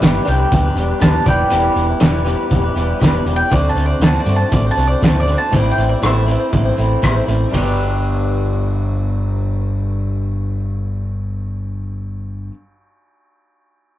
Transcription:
Already playing: mandolin E5
0.01 fingered electric bass G1, steel-string acoustic guitar G3 D4 G4 B4, clean electric guitar B3, snare, closed hi-hat
0.26 fingered electric bass C2, clean electric guitar G2 D3 B3, steel-string acoustic guitar G3 D4 G4 B4, mandolin G5, closed hi-hat
0.38 steel-string acoustic guitar D4 G4 B4
0.51 fingered electric bass D2, clean electric guitar G3 B3 D4 G4, kick, closed hi-hat
0.63 steel-string acoustic guitar D4 G4 B4
0.75 fingered electric bass E1, steel-string acoustic guitar G3 D4 G4 B4, clean electric guitar B3, closed hi-hat
0.87 steel-string acoustic guitar D4 G4 B4
1.00 fingered electric bass D#2, clean electric guitar G2 D3 B3, steel-string acoustic guitar G3 D4 G4 B4, mandolin A5, kick, snare, closed hi-hat
1.14 steel-string acoustic guitar D4 G4 B4
1.25 fingered electric bass E1, clean electric guitar E2 B2 E3 B3, steel-string acoustic guitar G3 E4 G4 B4, mandolin D5 G5, kick, closed hi-hat
1.49 fingered electric bass E1, clean electric guitar E2 B2 B3, steel-string acoustic guitar E3 G3 E4 G4 B4, closed hi-hat
1.75 fingered electric bass E1, clean electric guitar E3 G3 B3 G4, closed hi-hat
1.86 steel-string acoustic guitar E4 G4 B4
2.00 fingered electric bass E1, steel-string acoustic guitar E3 G3 E4 G4 B4, clean electric guitar B3, snare, closed hi-hat
2.25 clean electric guitar E2 B2 E3 B3, steel-string acoustic guitar G3 E4 G4 B4, closed hi-hat
2.49 fingered electric bass E1, clean electric guitar E3 G3 B3 G4, kick, closed hi-hat
2.63 steel-string acoustic guitar E4 G4 B4
2.75 fingered electric bass E1, clean electric guitar E3 B3, steel-string acoustic guitar G3 E4 G4 B4, closed hi-hat
2.87 steel-string acoustic guitar G4 B4
2.91 steel-string acoustic guitar E4
3.00 fingered electric bass E1, clean electric guitar E2 B2 B3, steel-string acoustic guitar E3 G3 E4 G4 B4, kick, snare, closed hi-hat
3.13 steel-string acoustic guitar E4 G4 B4
3.25 fingered electric bass E1, clean electric guitar E3 B3, steel-string acoustic guitar G3 E4 G4 B4, closed hi-hat
3.36 mandolin G5
3.50 fingered electric bass D2, steel-string acoustic guitar D3 A3 C4 F#4 C5, mandolin D5, kick, closed hi-hat
3.69 mandolin A5
3.75 fingered electric bass D2, clean electric guitar A3 C4 F#4, closed hi-hat
3.86 steel-string acoustic guitar C5, mandolin D5
3.90 steel-string acoustic guitar C4 F#4
4.00 fingered electric bass D2, steel-string acoustic guitar D3 A3 C4 F#4 C5, snare, closed hi-hat
4.04 mandolin A5
4.20 mandolin D5
4.26 fingered electric bass G2, clean electric guitar D3, steel-string acoustic guitar A3 C4 F#4 C5, closed hi-hat
4.36 steel-string acoustic guitar C5, mandolin A5
4.41 steel-string acoustic guitar C4 F#4
4.50 fingered electric bass A1, clean electric guitar D3 A3 C4 F#4, mandolin D5, kick, closed hi-hat
4.65 steel-string acoustic guitar C4 F#4 C5
4.71 mandolin A5
4.76 fingered electric bass C2, steel-string acoustic guitar A3 C4 F#4 C5, closed hi-hat
4.87 steel-string acoustic guitar C5, mandolin D5
4.92 steel-string acoustic guitar C4 F#4
5.03 fingered electric bass D2, steel-string acoustic guitar D3 A3 C4 F#4 C5, mandolin A5, kick, snare, closed hi-hat
5.16 steel-string acoustic guitar F#4 C5
5.20 steel-string acoustic guitar C4, mandolin D5
5.26 steel-string acoustic guitar A3 C4, clean electric guitar F#4, closed hi-hat
5.31 steel-string acoustic guitar F#4 C5
5.38 mandolin A5
5.53 fingered electric bass A1, steel-string acoustic guitar A2 E3 A3 C4 E4 C5, mandolin D5, kick, closed hi-hat
5.71 mandolin G5
5.76 fingered electric bass A1, clean electric guitar A3 C4 E4, closed hi-hat
5.89 steel-string acoustic guitar C4 E4 C5, mandolin D5
5.94 steel-string acoustic guitar A3
6.02 fingered electric bass A1, steel-string acoustic guitar A2 E3 A3 C4 E4 C5, mandolin E5, cross-stick, closed hi-hat
6.26 clean electric guitar A2 E3, steel-string acoustic guitar A3 C4 E4 C5, closed hi-hat
6.38 steel-string acoustic guitar A3 C4 E4 C5
6.51 fingered electric bass A1, clean electric guitar E3 A3 C4 E4, kick, closed hi-hat
6.64 steel-string acoustic guitar A3 C4 E4 C5
6.77 fingered electric bass A1, steel-string acoustic guitar A3 C4 E4 C5, closed hi-hat
7.02 fingered electric bass A1, steel-string acoustic guitar A2 E3 A3 C4 E4 C5, kick, cross-stick, closed hi-hat
7.14 steel-string acoustic guitar A3 C4 E4 C5
7.27 fingered electric bass A1, steel-string acoustic guitar A3 C4 E4 C5, closed hi-hat
7.49 clean electric guitar G2 D3, steel-string acoustic guitar G3
7.53 fingered electric bass G1, clean electric guitar G3 B3, steel-string acoustic guitar D4, kick, ride
7.58 steel-string acoustic guitar G4
7.63 steel-string acoustic guitar B4

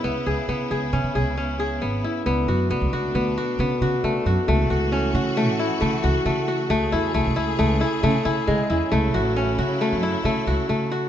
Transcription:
Already playing: string section C#3 B3 E4, kora E4 G#4
0.04 upright bass C#2, kora B3
0.26 upright bass C#2, kora G#4
0.48 upright bass C#3, kora B3
0.71 upright bass C#2, kora G#4
0.93 upright bass C#3, kora C#4
1.15 upright bass C#2, kora G#4
1.37 kora C#4
1.60 kora G#4
1.82 upright bass G#1, kora B3
2.04 kora E4
2.26 upright bass C#2, string section B2 A3 D4, kora B3
2.48 upright bass F#2, kora F#4
2.70 upright bass C#2, kora B3
2.81 upright bass C#2
2.93 upright bass C#2, kora F#4
3.15 upright bass D2, kora B3
3.38 kora F#4
3.59 upright bass C#3, kora B3
3.81 upright bass C#3, kora F#4
4.04 upright bass C#3, kora A3
4.26 upright bass F#2, kora F#4
4.47 upright bass C#2, string section E3 F#4, kora A3
4.70 upright bass C#2, kora F#4
4.92 kora C#4
5.14 upright bass C#3, kora F#4
5.37 kora A3
5.48 upright bass A2
5.59 kora E4
5.81 upright bass C#3, kora A3
6.04 upright bass C#2, kora F#4
6.25 upright bass C#3, kora A3
6.48 kora F#4
6.70 upright bass C#2, string section C#3 G#4, kora A3
6.92 upright bass E2, kora E4
7.14 upright bass C#2, kora A3
7.26 upright bass C#2
7.36 upright bass C#2, kora E4
7.59 upright bass C#2, kora A3
7.81 kora E4
8.03 upright bass C#3, kora A3
8.25 upright bass C#3, kora E4
8.47 upright bass C#3, kora G#3
8.70 upright bass E2, kora E4
8.91 upright bass C#2, string section F#3 E4, kora A3
9.14 upright bass A1, kora F#4
9.36 kora C#4
9.58 upright bass C#3, kora F#4
9.81 kora A3
9.92 upright bass F#2
10.03 kora E4
10.24 upright bass C#3, kora A3
10.47 upright bass C#2, kora F#4
10.69 upright bass C#3, kora A3
10.92 kora F#4

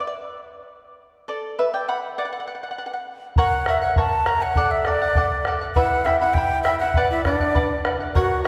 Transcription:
0.00 charango D5
0.07 charango D5
1.28 charango A4 D5
1.59 charango B4 E5
1.73 charango D5 G5
1.88 charango F#5 B5
2.18 charango D5 F#5
2.25 charango F#5
2.33 charango F#5
2.40 charango F#5
2.47 charango F#5
2.55 charango F#5
2.63 charango F#5
2.71 charango F#5
2.78 charango F#5
2.86 charango F#5
2.93 charango F#5
3.36 charango A#4 C#5 F#5, quena F#5, bombo low
3.66 charango A#4 C#5 F#5, quena E5, bombo rim
3.81 charango C#5 F#5, quena F#5
3.96 charango A#4 C#5 F#5, quena A5, bombo low
4.26 charango A#4 C#5 F#5, quena A#5, bombo rim
4.41 charango C#5 F#5, quena F#5
4.55 charango A4 D5 F#5, bombo low
4.71 quena E5
4.85 charango A4 D5 F#5, quena D5, bombo rim
5.02 charango D5 F#5
5.15 charango A4 D5 F#5, bombo low
5.45 charango A4 D5 F#5, bombo rim
5.61 charango D5 F#5
5.75 charango E4 B4 E5 B5, quena F#5, bombo low
6.05 charango E4 E5 G5 B5, quena E5, bombo rim
6.20 charango E4 E5 B5, quena F#5
6.34 charango E4 E5 G5 B5, quena G5, bombo low
6.63 charango E4 E5 G5, quena E5, bombo rim
6.67 charango B5
6.79 charango E4 E5 B5, quena F#5
6.94 charango B4 D5 F#5, bombo low
7.10 quena E4 E5
7.25 quena D4 D5, charango B4 D5 F#5, bombo rim, bombo low
7.40 charango D5 F#5, bombo low
7.55 charango B4 D5 F#5, bombo low
7.85 charango B4 D5 F#5, bombo rim
8.00 charango D5 F#5
8.15 quena F#4 F#5, charango A#4 C#5 F#5, bombo low
8.44 charango A#4, quena E5

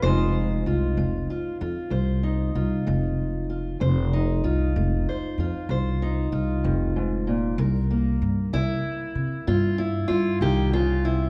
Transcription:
0.02 upright bass F1, steel-string acoustic guitar F2 G#3 D#4 C5
0.07 steel-string acoustic guitar F4
0.66 upright bass C2, steel-string acoustic guitar F4
0.97 upright bass F1, steel-string acoustic guitar G#3
1.30 steel-string acoustic guitar F4
1.61 upright bass F2, steel-string acoustic guitar F4
1.90 upright bass C2, steel-string acoustic guitar F2 C5
2.23 steel-string acoustic guitar D#4
2.55 upright bass C2, steel-string acoustic guitar F4
2.87 upright bass F1, steel-string acoustic guitar G#3
3.50 steel-string acoustic guitar F4
3.80 upright bass F1, steel-string acoustic guitar F2 C5
4.13 steel-string acoustic guitar D#4
4.44 upright bass C2, steel-string acoustic guitar F4
4.76 upright bass F1, steel-string acoustic guitar G#3
5.09 steel-string acoustic guitar C5
5.38 upright bass F2, steel-string acoustic guitar F4
5.69 upright bass C2, steel-string acoustic guitar F2 C5
6.02 steel-string acoustic guitar D#4
6.32 upright bass C2, steel-string acoustic guitar F4
6.64 upright bass F1, steel-string acoustic guitar G2
6.96 steel-string acoustic guitar G#2
7.27 steel-string acoustic guitar A#2
7.58 upright bass C2, steel-string acoustic guitar C3 A#4
7.91 steel-string acoustic guitar A#3
8.22 upright bass G2
8.53 upright bass C2, steel-string acoustic guitar G3 E4
9.15 upright bass C3
9.47 upright bass G2, steel-string acoustic guitar C3 F4
9.78 steel-string acoustic guitar E4
10.08 upright bass G2, steel-string acoustic guitar F4
10.41 upright bass C2, steel-string acoustic guitar D#3 G4
10.73 steel-string acoustic guitar C#3 F4
11.05 steel-string acoustic guitar C3 E4

